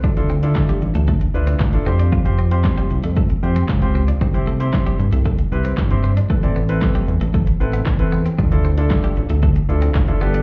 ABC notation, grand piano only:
X:1
M:4/4
L:1/16
Q:1/4=115
K:Ddor
V:1 name="Grand piano"
[FA] [DEFA] z [DEFA]3 z4 [DEFB] z2 [DEFA] [CFGc]2 | z [CFGc] z [CFGc]3 z4 [CFGc] z2 [CFGc] z2 | [Gc] [CEGc] z [CEGc]3 z4 [CEGB] z2 [CEGc] z2 | [AB] [CEAd] z [CEAB]3 z4 [CEAB] z2 [CEAB] z2 |
[FA] [DEFA] z [DEFA]3 z4 [DEFA] z2 [DEFA] [B,DGA]2 |]